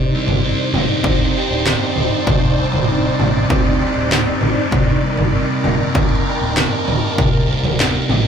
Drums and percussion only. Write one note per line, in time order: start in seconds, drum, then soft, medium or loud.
0.28 floor tom medium
0.74 floor tom medium
0.74 mid tom medium
1.04 kick loud
1.04 floor tom medium
1.65 snare medium
1.65 floor tom medium
1.96 floor tom medium
2.27 kick loud
2.27 floor tom medium
2.73 floor tom medium
3.20 floor tom medium
3.20 mid tom medium
3.50 kick loud
3.50 floor tom medium
4.11 snare medium
4.11 floor tom medium
4.41 floor tom medium
4.71 kick loud
4.71 floor tom medium
5.17 floor tom medium
5.64 floor tom medium
5.64 mid tom medium
5.95 kick loud
5.95 floor tom medium
6.56 snare medium
6.56 floor tom medium
6.88 floor tom medium
7.18 kick loud
7.18 floor tom medium
7.64 floor tom medium
7.80 snare medium
8.09 floor tom medium
8.09 mid tom medium